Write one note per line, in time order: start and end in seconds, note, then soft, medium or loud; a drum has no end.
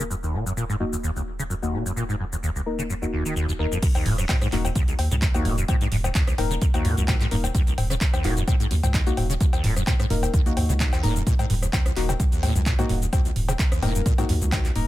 0.00 3.80 D#1 medium
0.00 shaker medium
0.10 0.14 F#2 medium
0.10 shaker medium
0.23 0.35 D#2 medium
0.23 shaker soft
0.34 0.44 A#2 medium
0.46 0.52 F#2 medium
0.46 shaker medium
0.57 0.64 A#2 loud
0.57 shaker medium
0.69 0.75 G#2 loud
0.69 shaker soft
0.80 0.84 F#2 medium
0.80 0.93 A#3 medium
0.80 0.93 D#4 medium
0.80 0.93 F#4 medium
0.93 0.96 D#2 medium
0.93 shaker medium
1.03 1.10 D#2 loud
1.03 shaker medium
1.16 1.22 C#2 medium
1.16 shaker soft
1.39 1.43 C#3 loud
1.39 shaker medium
1.50 1.54 F#2 medium
1.50 shaker medium
1.62 1.75 D#2 medium
1.62 1.82 A#3 medium
1.62 1.82 D#4 medium
1.62 1.82 F#4 loud
1.62 shaker soft
1.73 1.83 A#2 loud
1.86 1.92 F#2 medium
1.86 shaker medium
1.96 2.03 A#2 loud
1.96 shaker medium
2.09 2.15 G#2 loud
2.09 shaker soft
2.20 2.24 F#2 medium
2.32 2.36 D#2 medium
2.32 shaker medium
2.43 2.50 D#2 loud
2.43 shaker medium
2.55 2.61 C#2 medium
2.55 shaker soft
2.66 2.86 A#3 medium
2.66 2.86 D#4 medium
2.66 2.86 A#4 medium
2.79 2.82 C#3 loud
2.79 shaker medium
2.89 2.94 F#2 medium
2.89 shaker medium
3.02 3.05 D#2 medium
3.02 3.57 A#3 medium
3.02 3.57 D#4 medium
3.02 3.57 F#4 medium
3.02 shaker soft
3.13 3.23 D#2 medium
3.25 3.34 D#3 medium
3.25 shaker medium
3.36 3.46 D#2 loud
3.36 shaker medium
3.49 3.52 D#2 medium
3.49 shaker soft
3.59 3.66 D#2 loud
3.59 3.72 A#3 medium
3.59 3.72 D#4 medium
3.59 3.72 A#4 medium
3.72 3.78 F2 medium
3.72 shaker medium
3.82 3.87 F#2 medium
3.82 kick loud
3.82 closed hi-hat medium
3.82 crash loud
3.82 shaker medium
3.95 4.07 D#2 medium
3.95 closed hi-hat soft
3.95 cowbell medium
3.95 shaker soft
4.06 4.25 D#1 loud
4.06 4.16 A#2 loud
4.06 mid tom loud
4.06 open hi-hat loud
4.18 4.24 F#2 medium
4.18 cross-stick medium
4.18 closed hi-hat soft
4.18 shaker medium
4.29 4.36 A#2 loud
4.29 kick loud
4.29 clap loud
4.29 closed hi-hat medium
4.29 cowbell medium
4.29 shaker medium
4.41 4.47 G#2 loud
4.41 cross-stick medium
4.41 closed hi-hat soft
4.41 shaker soft
4.52 4.71 D#1 loud
4.52 4.56 F#2 medium
4.52 4.66 A#3 medium
4.52 4.66 D#4 medium
4.52 4.66 F#4 loud
4.52 clap soft
4.52 open hi-hat medium
4.65 4.68 D#2 medium
4.65 closed hi-hat soft
4.65 cowbell medium
4.65 shaker medium
4.75 4.82 D#2 loud
4.75 kick loud
4.75 closed hi-hat medium
4.75 shaker medium
4.88 4.94 C#2 medium
4.88 closed hi-hat soft
4.88 shaker soft
4.99 5.09 D#2 loud
4.99 open hi-hat loud
4.99 cowbell medium
5.11 5.29 C#2 loud
5.11 5.15 C#3 loud
5.11 closed hi-hat soft
5.11 mid tom medium
5.11 shaker medium
5.22 5.26 F#2 medium
5.22 kick loud
5.22 clap loud
5.22 closed hi-hat medium
5.22 shaker medium
5.34 5.47 D#2 medium
5.34 5.54 A#3 medium
5.34 5.54 D#4 medium
5.34 5.54 F#4 loud
5.34 closed hi-hat soft
5.34 cowbell medium
5.34 shaker soft
5.45 5.64 D#1 medium
5.45 5.56 A#2 loud
5.45 mid tom medium
5.45 open hi-hat medium
5.58 5.64 F#2 medium
5.58 closed hi-hat soft
5.58 shaker medium
5.68 5.75 A#2 loud
5.68 kick loud
5.68 closed hi-hat medium
5.68 cowbell medium
5.68 shaker medium
5.81 5.87 G#2 loud
5.81 closed hi-hat soft
5.81 shaker soft
5.92 6.11 D#1 loud
5.92 5.96 F#2 medium
5.92 mid tom medium
5.92 open hi-hat loud
6.04 6.08 D#2 medium
6.04 cross-stick medium
6.04 closed hi-hat soft
6.04 cowbell medium
6.04 shaker medium
6.15 6.22 D#2 loud
6.15 kick loud
6.15 clap loud
6.15 closed hi-hat medium
6.15 shaker medium
6.27 6.33 C#2 medium
6.27 cross-stick medium
6.27 closed hi-hat soft
6.27 shaker soft
6.38 6.57 D#1 loud
6.38 6.58 A#3 medium
6.38 6.58 D#4 medium
6.38 6.58 A#4 medium
6.38 mid tom medium
6.38 open hi-hat loud
6.38 cowbell medium
6.51 6.54 C#3 loud
6.51 closed hi-hat soft
6.51 shaker medium
6.61 6.66 F#2 medium
6.61 kick loud
6.61 closed hi-hat medium
6.61 shaker medium
6.74 6.86 D#2 medium
6.74 7.29 A#3 medium
6.74 7.29 D#4 medium
6.74 7.29 F#4 medium
6.74 closed hi-hat soft
6.74 cowbell medium
6.74 shaker soft
6.85 6.95 D#2 loud
6.85 6.95 A#2 loud
6.85 mid tom medium
6.85 open hi-hat loud
6.97 7.15 C#2 loud
6.97 7.03 F#2 medium
6.97 closed hi-hat soft
6.97 shaker medium
7.08 7.15 A#2 loud
7.08 kick loud
7.08 clap loud
7.08 closed hi-hat medium
7.08 cowbell medium
7.08 shaker medium
7.20 7.26 G#2 loud
7.20 clap soft
7.20 closed hi-hat soft
7.20 shaker soft
7.31 7.50 D#1 medium
7.31 7.35 F#2 medium
7.31 7.45 A#3 medium
7.31 7.45 D#4 medium
7.31 7.45 A#4 loud
7.31 mid tom medium
7.31 open hi-hat loud
7.44 7.47 D#2 medium
7.44 closed hi-hat soft
7.44 cowbell medium
7.44 shaker medium
7.54 7.61 D#2 loud
7.54 kick loud
7.54 closed hi-hat medium
7.54 shaker medium
7.67 7.73 C#2 medium
7.67 closed hi-hat soft
7.67 shaker soft
7.78 7.97 D#1 loud
7.78 mid tom loud
7.78 open hi-hat loud
7.78 cowbell medium
7.90 7.94 C#3 loud
7.90 cross-stick medium
7.90 closed hi-hat soft
7.90 shaker medium
8.01 8.05 F#2 medium
8.01 kick loud
8.01 clap loud
8.01 closed hi-hat medium
8.01 shaker medium
8.13 8.26 D#2 medium
8.13 cross-stick medium
8.13 closed hi-hat soft
8.13 cowbell medium
8.13 shaker soft
8.24 8.43 D#1 loud
8.24 8.35 A#2 loud
8.24 8.38 A#3 medium
8.24 8.38 D#4 medium
8.24 8.38 F#4 loud
8.24 clap soft
8.24 open hi-hat loud
8.37 8.43 F#2 medium
8.37 closed hi-hat soft
8.37 shaker medium
8.47 8.54 A#2 loud
8.47 kick loud
8.47 closed hi-hat medium
8.47 cowbell medium
8.47 shaker medium
8.60 8.66 G#2 loud
8.60 closed hi-hat soft
8.60 shaker soft
8.71 8.81 D#2 loud
8.71 8.75 F#2 medium
8.71 open hi-hat loud
8.83 9.01 C#2 loud
8.83 8.87 D#2 medium
8.83 closed hi-hat soft
8.83 mid tom medium
8.83 cowbell medium
8.83 shaker medium
8.94 9.01 D#2 loud
8.94 kick loud
8.94 clap loud
8.94 closed hi-hat medium
8.94 shaker medium
9.06 9.12 C#2 medium
9.06 9.26 A#3 medium
9.06 9.26 D#4 medium
9.06 9.26 F#4 loud
9.06 closed hi-hat soft
9.06 shaker soft
9.17 9.36 D#1 medium
9.17 mid tom medium
9.17 open hi-hat loud
9.17 cowbell medium
9.30 9.33 C#3 loud
9.30 closed hi-hat soft
9.30 shaker medium
9.41 9.45 F#2 medium
9.41 kick loud
9.41 closed hi-hat medium
9.41 shaker medium
9.53 9.65 D#2 medium
9.53 closed hi-hat soft
9.53 cowbell medium
9.53 shaker soft
9.64 9.83 D#1 loud
9.64 9.74 A#2 loud
9.64 mid tom loud
9.64 open hi-hat loud
9.76 9.82 F#2 medium
9.76 cross-stick medium
9.76 closed hi-hat soft
9.76 shaker medium
9.87 9.94 A#2 loud
9.87 kick loud
9.87 clap loud
9.87 closed hi-hat medium
9.87 cowbell medium
9.87 shaker medium
9.99 10.05 G#2 loud
9.99 cross-stick medium
9.99 closed hi-hat soft
9.99 shaker soft
10.10 10.29 D#1 loud
10.10 10.14 F#2 medium
10.10 10.30 A#3 medium
10.10 10.31 D#4 medium
10.10 10.30 A#4 medium
10.10 mid tom medium
10.10 open hi-hat loud
10.23 10.26 D#2 medium
10.23 closed hi-hat soft
10.23 cowbell medium
10.23 shaker medium
10.33 10.40 D#2 loud
10.33 kick loud
10.33 closed hi-hat medium
10.33 shaker medium
10.46 10.52 C#2 medium
10.46 11.01 A#3 medium
10.46 11.01 D#4 medium
10.46 11.01 F#4 medium
10.46 closed hi-hat soft
10.46 shaker soft
10.57 10.67 D#2 loud
10.57 mid tom medium
10.57 open hi-hat loud
10.57 cowbell medium
10.69 10.87 C#2 loud
10.69 10.73 C#3 loud
10.69 closed hi-hat soft
10.69 shaker medium
10.80 10.84 F#2 medium
10.80 kick loud
10.80 clap loud
10.80 closed hi-hat medium
10.80 shaker medium
10.92 11.05 D#2 medium
10.92 clap soft
10.92 closed hi-hat soft
10.92 cowbell medium
10.92 shaker soft
11.03 11.22 D#1 medium
11.03 11.14 A#2 loud
11.03 11.17 A#3 medium
11.03 11.17 D#4 medium
11.03 11.17 A#4 medium
11.03 mid tom medium
11.03 open hi-hat medium
11.16 11.22 F#2 medium
11.16 closed hi-hat soft
11.16 shaker medium
11.26 11.33 A#2 loud
11.26 kick loud
11.26 closed hi-hat medium
11.26 shaker medium
11.39 11.45 G#2 loud
11.39 closed hi-hat soft
11.39 cowbell medium
11.39 shaker soft
11.50 11.69 D#1 loud
11.50 11.54 F#2 medium
11.50 mid tom loud
11.50 open hi-hat loud
11.62 11.66 D#2 medium
11.62 cross-stick medium
11.62 closed hi-hat soft
11.62 shaker medium
11.73 11.80 D#2 loud
11.73 kick loud
11.73 clap loud
11.73 closed hi-hat medium
11.73 cowbell medium
11.73 shaker medium
11.85 11.91 C#2 medium
11.85 cross-stick medium
11.85 closed hi-hat soft
11.85 shaker soft
11.96 12.15 D#1 loud
11.96 12.10 A#3 medium
11.96 12.10 D#4 medium
11.96 12.10 F#4 loud
11.96 clap soft
11.96 open hi-hat loud
12.09 12.12 C#3 loud
12.09 closed hi-hat soft
12.09 cowbell medium
12.09 shaker medium
12.19 12.24 F#2 medium
12.19 kick loud
12.19 closed hi-hat medium
12.19 shaker medium
12.32 12.44 D#2 medium
12.32 closed hi-hat soft
12.32 shaker soft
12.43 12.53 D#2 loud
12.43 12.53 A#2 loud
12.43 open hi-hat loud
12.43 cowbell medium
12.55 12.74 C#2 loud
12.55 12.61 F#2 medium
12.55 closed hi-hat soft
12.55 mid tom medium
12.55 shaker medium
12.66 12.73 A#2 loud
12.66 kick loud
12.66 clap loud
12.66 closed hi-hat medium
12.66 shaker medium
12.79 12.85 G#2 medium
12.79 12.98 A#3 medium
12.79 12.98 D#4 medium
12.79 12.98 F#4 loud
12.79 closed hi-hat soft
12.79 cowbell medium
12.79 shaker soft
12.89 13.08 D#1 medium
12.89 12.94 F#2 medium
12.89 mid tom medium
12.89 open hi-hat loud
13.02 13.05 D#2 medium
13.02 closed hi-hat soft
13.02 shaker medium
13.13 13.20 D#2 loud
13.13 kick loud
13.13 closed hi-hat medium
13.13 cowbell medium
13.13 shaker medium
13.25 13.31 C#2 medium
13.25 closed hi-hat soft
13.25 shaker soft
13.36 13.55 D#1 loud
13.36 mid tom medium
13.36 open hi-hat loud
13.48 13.52 C#3 loud
13.48 cross-stick medium
13.48 closed hi-hat soft
13.48 cowbell medium
13.48 shaker medium
13.59 13.63 F#2 medium
13.59 kick loud
13.59 clap loud
13.59 closed hi-hat medium
13.59 shaker medium
13.72 13.84 D#2 medium
13.72 cross-stick medium
13.72 closed hi-hat soft
13.72 shaker soft
13.82 14.01 D#1 loud
13.82 13.93 A#2 loud
13.82 14.03 A#3 medium
13.82 14.03 D#4 medium
13.82 14.03 A#4 medium
13.82 mid tom medium
13.82 open hi-hat medium
13.82 cowbell medium
13.95 14.01 F#2 medium
13.95 closed hi-hat soft
13.95 shaker medium
14.06 14.13 A#2 loud
14.06 kick loud
14.06 closed hi-hat medium
14.06 shaker medium
14.18 14.24 G#2 loud
14.18 14.73 A#3 medium
14.18 14.73 D#4 medium
14.18 14.73 F#4 medium
14.18 closed hi-hat soft
14.18 cowbell medium
14.18 shaker soft
14.29 14.39 D#2 loud
14.29 14.33 F#2 medium
14.29 mid tom medium
14.29 open hi-hat loud
14.41 14.60 C#2 loud
14.41 14.45 D#2 medium
14.41 closed hi-hat soft
14.41 shaker medium
14.52 14.59 D#2 loud
14.52 kick loud
14.52 clap loud
14.52 closed hi-hat medium
14.52 cowbell medium
14.52 shaker medium
14.65 14.71 C#2 medium
14.65 clap soft
14.65 closed hi-hat soft
14.65 shaker soft
14.76 14.87 D#1 medium
14.76 14.87 A#3 medium
14.76 14.87 D#4 medium
14.76 14.87 A#4 loud
14.76 mid tom medium
14.76 open hi-hat medium